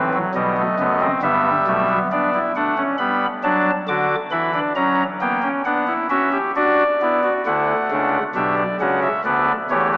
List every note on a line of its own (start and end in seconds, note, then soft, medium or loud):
0.00 0.18 A1 medium
0.00 0.18 A2 medium
0.00 0.18 C4 medium
0.00 0.18 B4 medium
0.14 0.32 F#3 medium
0.35 0.62 B1 medium
0.35 0.62 B2 medium
0.35 0.54 G3 medium
0.35 0.62 B3 medium
0.35 1.11 D#5 medium
0.57 0.76 A3 medium
0.79 1.07 F#1 medium
0.79 1.07 F#2 medium
0.79 1.07 A3 medium
0.79 0.98 B3 medium
1.01 1.20 C4 medium
1.22 1.50 G1 medium
1.22 1.50 G2 medium
1.22 1.99 G3 medium
1.22 1.50 B3 medium
1.22 1.99 E5 medium
1.67 1.95 B1 medium
1.67 1.94 B2 medium
1.67 1.86 A3 medium
1.89 2.08 B3 medium
2.12 2.39 B3 medium
2.12 2.30 D4 medium
2.12 2.38 D5 medium
2.34 2.52 E4 medium
2.56 2.83 A3 medium
2.56 2.74 D4 medium
2.56 2.83 F#5 medium
2.77 2.96 C#4 medium
2.98 3.26 G3 medium
2.98 3.26 B3 medium
2.98 3.26 B5 medium
3.43 3.71 F#3 medium
3.43 3.71 D4 medium
3.43 3.71 A5 loud
3.88 4.15 D3 medium
3.88 4.16 F#4 medium
3.88 4.15 D6 loud
4.31 4.59 E3 medium
4.31 4.51 E4 medium
4.31 4.59 B5 loud
4.54 4.73 D4 medium
4.76 5.03 F#3 medium
4.76 5.03 C#4 medium
4.76 5.03 A#5 medium
5.21 5.48 A#3 medium
5.21 5.40 B3 medium
5.21 5.49 G5 medium
5.42 5.62 C#4 medium
5.65 5.93 B3 medium
5.65 5.85 D4 medium
5.65 5.93 F#5 medium
5.87 6.07 E4 medium
6.10 6.38 C#4 medium
6.10 6.29 F#4 medium
6.10 6.38 E5 loud
6.32 6.52 G4 medium
6.56 6.84 D4 medium
6.56 6.84 F#4 medium
6.56 7.33 D5 loud
7.01 7.29 B3 medium
7.01 7.21 E4 medium
7.23 7.42 F#4 medium
7.46 7.74 D2 medium
7.46 7.74 D3 medium
7.46 8.23 A3 medium
7.46 7.74 E4 medium
7.46 8.24 F#5 medium
7.91 8.19 C#2 medium
7.91 8.19 C#3 medium
7.91 8.18 D4 medium
8.36 8.63 B1 medium
8.36 8.63 B2 medium
8.36 8.63 D4 medium
8.36 8.63 G4 medium
8.36 8.55 E5 medium
8.57 8.77 D5 medium
8.80 9.08 C#2 medium
8.80 9.08 C#3 medium
8.80 9.08 C#4 medium
8.80 9.08 F#4 medium
8.80 8.99 F#5 medium
9.02 9.21 E5 medium
9.25 9.52 D2 medium
9.25 9.52 D3 medium
9.25 9.52 B3 medium
9.25 9.53 B4 medium
9.25 9.52 D5 medium
9.70 9.97 E2 medium
9.70 9.97 E3 medium
9.70 9.97 A3 medium
9.70 9.97 G4 medium
9.70 9.89 C#5 medium
9.93 9.97 B4 medium